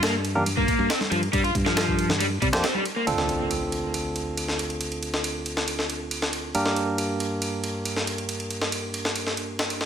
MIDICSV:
0, 0, Header, 1, 6, 480
1, 0, Start_track
1, 0, Key_signature, -1, "minor"
1, 0, Tempo, 434783
1, 1469, Time_signature, 4, 2, 24, 8
1, 10881, End_track
2, 0, Start_track
2, 0, Title_t, "Tine electric piano"
2, 0, Program_c, 0, 4
2, 390, Note_on_c, 0, 67, 67
2, 390, Note_on_c, 0, 70, 81
2, 391, Note_on_c, 0, 58, 74
2, 391, Note_on_c, 0, 62, 69
2, 470, Note_off_c, 0, 58, 0
2, 470, Note_off_c, 0, 62, 0
2, 470, Note_off_c, 0, 67, 0
2, 470, Note_off_c, 0, 70, 0
2, 2790, Note_on_c, 0, 58, 82
2, 2790, Note_on_c, 0, 62, 76
2, 2791, Note_on_c, 0, 67, 75
2, 2791, Note_on_c, 0, 72, 91
2, 2917, Note_off_c, 0, 58, 0
2, 2917, Note_off_c, 0, 62, 0
2, 2917, Note_off_c, 0, 67, 0
2, 2917, Note_off_c, 0, 72, 0
2, 3387, Note_on_c, 0, 60, 69
2, 3387, Note_on_c, 0, 62, 65
2, 3388, Note_on_c, 0, 65, 64
2, 3388, Note_on_c, 0, 69, 78
2, 7200, Note_off_c, 0, 60, 0
2, 7200, Note_off_c, 0, 62, 0
2, 7200, Note_off_c, 0, 65, 0
2, 7201, Note_off_c, 0, 69, 0
2, 7228, Note_on_c, 0, 58, 71
2, 7228, Note_on_c, 0, 62, 64
2, 7228, Note_on_c, 0, 67, 67
2, 7228, Note_on_c, 0, 70, 78
2, 10881, Note_off_c, 0, 58, 0
2, 10881, Note_off_c, 0, 62, 0
2, 10881, Note_off_c, 0, 67, 0
2, 10881, Note_off_c, 0, 70, 0
2, 10881, End_track
3, 0, Start_track
3, 0, Title_t, "Overdriven electric guitar"
3, 0, Program_c, 1, 29
3, 30, Note_on_c, 1, 58, 80
3, 145, Note_off_c, 1, 58, 0
3, 630, Note_on_c, 1, 58, 77
3, 977, Note_off_c, 1, 58, 0
3, 989, Note_on_c, 1, 60, 82
3, 1079, Note_off_c, 1, 60, 0
3, 1228, Note_on_c, 1, 53, 100
3, 1319, Note_off_c, 1, 53, 0
3, 1467, Note_on_c, 1, 55, 82
3, 1559, Note_off_c, 1, 55, 0
3, 1589, Note_on_c, 1, 65, 77
3, 1677, Note_off_c, 1, 65, 0
3, 1830, Note_on_c, 1, 53, 76
3, 2299, Note_off_c, 1, 53, 0
3, 2429, Note_on_c, 1, 55, 100
3, 2483, Note_off_c, 1, 55, 0
3, 2669, Note_on_c, 1, 55, 73
3, 2723, Note_off_c, 1, 55, 0
3, 2907, Note_on_c, 1, 60, 82
3, 3018, Note_off_c, 1, 60, 0
3, 3030, Note_on_c, 1, 55, 78
3, 3118, Note_off_c, 1, 55, 0
3, 3271, Note_on_c, 1, 58, 75
3, 3359, Note_off_c, 1, 58, 0
3, 10881, End_track
4, 0, Start_track
4, 0, Title_t, "Fingered electric bass"
4, 0, Program_c, 2, 33
4, 0, Note_on_c, 2, 43, 88
4, 706, Note_off_c, 2, 43, 0
4, 871, Note_on_c, 2, 43, 94
4, 961, Note_off_c, 2, 43, 0
4, 1229, Note_on_c, 2, 43, 85
4, 1413, Note_off_c, 2, 43, 0
4, 1471, Note_on_c, 2, 43, 100
4, 1654, Note_off_c, 2, 43, 0
4, 1710, Note_on_c, 2, 43, 89
4, 2624, Note_off_c, 2, 43, 0
4, 2670, Note_on_c, 2, 48, 82
4, 2762, Note_off_c, 2, 48, 0
4, 2790, Note_on_c, 2, 41, 90
4, 2881, Note_off_c, 2, 41, 0
4, 3389, Note_on_c, 2, 38, 81
4, 7206, Note_off_c, 2, 38, 0
4, 7229, Note_on_c, 2, 43, 82
4, 10881, Note_off_c, 2, 43, 0
4, 10881, End_track
5, 0, Start_track
5, 0, Title_t, "Impact"
5, 0, Program_c, 3, 103
5, 3389, Note_on_c, 3, 60, 67
5, 5309, Note_off_c, 3, 60, 0
5, 10881, End_track
6, 0, Start_track
6, 0, Title_t, "Drums"
6, 31, Note_on_c, 9, 38, 115
6, 31, Note_on_c, 9, 51, 86
6, 141, Note_off_c, 9, 38, 0
6, 141, Note_off_c, 9, 51, 0
6, 271, Note_on_c, 9, 51, 68
6, 382, Note_off_c, 9, 51, 0
6, 395, Note_on_c, 9, 64, 86
6, 505, Note_off_c, 9, 64, 0
6, 510, Note_on_c, 9, 63, 61
6, 512, Note_on_c, 9, 51, 88
6, 621, Note_off_c, 9, 63, 0
6, 622, Note_off_c, 9, 51, 0
6, 632, Note_on_c, 9, 36, 95
6, 743, Note_off_c, 9, 36, 0
6, 751, Note_on_c, 9, 36, 95
6, 753, Note_on_c, 9, 51, 67
6, 861, Note_off_c, 9, 36, 0
6, 864, Note_off_c, 9, 51, 0
6, 993, Note_on_c, 9, 38, 111
6, 993, Note_on_c, 9, 51, 89
6, 1104, Note_off_c, 9, 38, 0
6, 1104, Note_off_c, 9, 51, 0
6, 1110, Note_on_c, 9, 63, 89
6, 1114, Note_on_c, 9, 38, 39
6, 1220, Note_off_c, 9, 63, 0
6, 1225, Note_off_c, 9, 38, 0
6, 1233, Note_on_c, 9, 51, 69
6, 1344, Note_off_c, 9, 51, 0
6, 1356, Note_on_c, 9, 51, 44
6, 1466, Note_off_c, 9, 51, 0
6, 1470, Note_on_c, 9, 36, 109
6, 1472, Note_on_c, 9, 51, 85
6, 1581, Note_off_c, 9, 36, 0
6, 1582, Note_off_c, 9, 51, 0
6, 1595, Note_on_c, 9, 51, 45
6, 1705, Note_off_c, 9, 51, 0
6, 1710, Note_on_c, 9, 63, 84
6, 1711, Note_on_c, 9, 36, 95
6, 1713, Note_on_c, 9, 51, 67
6, 1820, Note_off_c, 9, 63, 0
6, 1821, Note_off_c, 9, 36, 0
6, 1824, Note_off_c, 9, 51, 0
6, 1835, Note_on_c, 9, 38, 49
6, 1945, Note_off_c, 9, 38, 0
6, 1953, Note_on_c, 9, 38, 118
6, 1953, Note_on_c, 9, 51, 88
6, 2063, Note_off_c, 9, 38, 0
6, 2063, Note_off_c, 9, 51, 0
6, 2073, Note_on_c, 9, 36, 96
6, 2183, Note_off_c, 9, 36, 0
6, 2193, Note_on_c, 9, 51, 69
6, 2303, Note_off_c, 9, 51, 0
6, 2315, Note_on_c, 9, 38, 58
6, 2318, Note_on_c, 9, 64, 78
6, 2425, Note_on_c, 9, 63, 60
6, 2426, Note_off_c, 9, 38, 0
6, 2428, Note_off_c, 9, 64, 0
6, 2434, Note_on_c, 9, 51, 86
6, 2536, Note_off_c, 9, 63, 0
6, 2544, Note_off_c, 9, 51, 0
6, 2671, Note_on_c, 9, 36, 94
6, 2673, Note_on_c, 9, 51, 68
6, 2781, Note_off_c, 9, 36, 0
6, 2784, Note_off_c, 9, 51, 0
6, 2794, Note_on_c, 9, 38, 116
6, 2905, Note_off_c, 9, 38, 0
6, 2912, Note_on_c, 9, 38, 104
6, 2912, Note_on_c, 9, 51, 78
6, 3022, Note_off_c, 9, 38, 0
6, 3022, Note_off_c, 9, 51, 0
6, 3030, Note_on_c, 9, 63, 81
6, 3140, Note_off_c, 9, 63, 0
6, 3151, Note_on_c, 9, 51, 63
6, 3262, Note_off_c, 9, 51, 0
6, 3392, Note_on_c, 9, 51, 79
6, 3502, Note_off_c, 9, 51, 0
6, 3513, Note_on_c, 9, 38, 45
6, 3623, Note_off_c, 9, 38, 0
6, 3632, Note_on_c, 9, 51, 64
6, 3742, Note_off_c, 9, 51, 0
6, 3872, Note_on_c, 9, 51, 80
6, 3982, Note_off_c, 9, 51, 0
6, 4110, Note_on_c, 9, 51, 60
6, 4220, Note_off_c, 9, 51, 0
6, 4351, Note_on_c, 9, 51, 78
6, 4461, Note_off_c, 9, 51, 0
6, 4589, Note_on_c, 9, 51, 64
6, 4700, Note_off_c, 9, 51, 0
6, 4830, Note_on_c, 9, 51, 80
6, 4940, Note_off_c, 9, 51, 0
6, 4951, Note_on_c, 9, 38, 34
6, 5062, Note_off_c, 9, 38, 0
6, 5070, Note_on_c, 9, 51, 63
6, 5181, Note_off_c, 9, 51, 0
6, 5189, Note_on_c, 9, 51, 40
6, 5300, Note_off_c, 9, 51, 0
6, 5306, Note_on_c, 9, 51, 79
6, 5416, Note_off_c, 9, 51, 0
6, 5429, Note_on_c, 9, 51, 41
6, 5539, Note_off_c, 9, 51, 0
6, 5548, Note_on_c, 9, 51, 65
6, 5658, Note_off_c, 9, 51, 0
6, 5671, Note_on_c, 9, 38, 44
6, 5781, Note_off_c, 9, 38, 0
6, 5787, Note_on_c, 9, 51, 79
6, 5897, Note_off_c, 9, 51, 0
6, 6027, Note_on_c, 9, 51, 65
6, 6137, Note_off_c, 9, 51, 0
6, 6149, Note_on_c, 9, 38, 51
6, 6259, Note_off_c, 9, 38, 0
6, 6267, Note_on_c, 9, 51, 77
6, 6378, Note_off_c, 9, 51, 0
6, 6390, Note_on_c, 9, 38, 35
6, 6500, Note_off_c, 9, 38, 0
6, 6509, Note_on_c, 9, 51, 64
6, 6619, Note_off_c, 9, 51, 0
6, 6747, Note_on_c, 9, 51, 78
6, 6858, Note_off_c, 9, 51, 0
6, 6870, Note_on_c, 9, 38, 52
6, 6980, Note_off_c, 9, 38, 0
6, 6987, Note_on_c, 9, 51, 63
6, 7097, Note_off_c, 9, 51, 0
6, 7227, Note_on_c, 9, 51, 81
6, 7338, Note_off_c, 9, 51, 0
6, 7348, Note_on_c, 9, 38, 45
6, 7458, Note_off_c, 9, 38, 0
6, 7468, Note_on_c, 9, 51, 65
6, 7578, Note_off_c, 9, 51, 0
6, 7709, Note_on_c, 9, 51, 83
6, 7820, Note_off_c, 9, 51, 0
6, 7951, Note_on_c, 9, 51, 61
6, 8062, Note_off_c, 9, 51, 0
6, 8189, Note_on_c, 9, 51, 82
6, 8300, Note_off_c, 9, 51, 0
6, 8430, Note_on_c, 9, 51, 61
6, 8540, Note_off_c, 9, 51, 0
6, 8671, Note_on_c, 9, 51, 80
6, 8782, Note_off_c, 9, 51, 0
6, 8794, Note_on_c, 9, 38, 35
6, 8904, Note_off_c, 9, 38, 0
6, 8913, Note_on_c, 9, 51, 63
6, 9024, Note_off_c, 9, 51, 0
6, 9034, Note_on_c, 9, 51, 42
6, 9144, Note_off_c, 9, 51, 0
6, 9150, Note_on_c, 9, 51, 82
6, 9260, Note_off_c, 9, 51, 0
6, 9273, Note_on_c, 9, 51, 42
6, 9383, Note_off_c, 9, 51, 0
6, 9389, Note_on_c, 9, 51, 65
6, 9500, Note_off_c, 9, 51, 0
6, 9511, Note_on_c, 9, 38, 46
6, 9622, Note_off_c, 9, 38, 0
6, 9630, Note_on_c, 9, 51, 82
6, 9740, Note_off_c, 9, 51, 0
6, 9869, Note_on_c, 9, 51, 60
6, 9980, Note_off_c, 9, 51, 0
6, 9991, Note_on_c, 9, 38, 52
6, 10102, Note_off_c, 9, 38, 0
6, 10108, Note_on_c, 9, 51, 77
6, 10218, Note_off_c, 9, 51, 0
6, 10230, Note_on_c, 9, 38, 34
6, 10340, Note_off_c, 9, 38, 0
6, 10348, Note_on_c, 9, 51, 64
6, 10458, Note_off_c, 9, 51, 0
6, 10588, Note_on_c, 9, 38, 96
6, 10699, Note_off_c, 9, 38, 0
6, 10711, Note_on_c, 9, 51, 72
6, 10822, Note_off_c, 9, 51, 0
6, 10829, Note_on_c, 9, 38, 48
6, 10881, Note_off_c, 9, 38, 0
6, 10881, End_track
0, 0, End_of_file